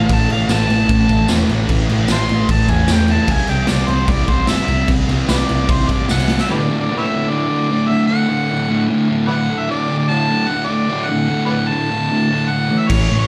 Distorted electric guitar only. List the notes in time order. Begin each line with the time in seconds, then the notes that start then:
0.08 A2 E3 A3
0.29 A2 E3 A3
0.47 A2 E3 A3
0.66 A2 E3 A3
0.88 A2 E3 A3
1.08 A2 E3 A3
1.28 A2 E3 A3
1.47 A2 E3 A3
1.67 A2 E3 A3
1.89 A2 E3 A3
2.08 A2 E3 A3
2.29 A2 E3 A3
2.48 A2 E3 A3
2.67 A2 E3 A3
2.88 A2 E3 A3
3.07 A2 E3 A3
3.29 C3 G3 C4
3.48 C3 G3 C4
3.69 C3 G3 C4
3.88 C3 G3 C4
4.08 C3 G3 C4
4.28 C3 G3 C4
4.46 C3 G3 C4
4.65 C3 G3 C4
4.87 C3 G3 C4
5.07 C3 G3 C4
5.27 C3 G3 C4
5.47 C3 G3 C4
5.68 C3 G3 C4
5.87 C3 G3 C4
6.08 C3 G3 C4
6.29 C3 G3 C4
6.49 D2 A2 D3
6.69 D2 A2 D3
6.89 D2 A2 D3
7.09 D2 A2 D3
7.29 D2 A2 D3
7.49 D2 A2 D3
7.69 D2 A2 D3
7.88 D2 A2 D3
8.08 D2 A2 D3
8.28 D2 A2 D3
8.49 D2 A2 D3
8.68 D2 A2 D3
8.88 D2 A2 D3
9.08 D2 A2 D3
9.28 D2 A2 D3
9.47 D2 A2 D3
9.68 D2 A2 D3
9.89 D2 A2 D3
10.08 D2 A2 D3
10.28 D2 A2 D3
10.47 D2 A2 D3
10.67 D2 A2 D3
10.88 D2 A2 D3
11.08 D2 A2 D3
11.28 D2 A2 D3
11.49 D2 A2 D3
11.69 D2 A2 D3
11.89 D2 A2 D3
12.10 D2 A2 D3
12.30 D2 A2 D3
12.49 D2 A2 D3
12.69 A2 E3 A3
12.88 A2 E3 A3
13.08 A2 E3 A3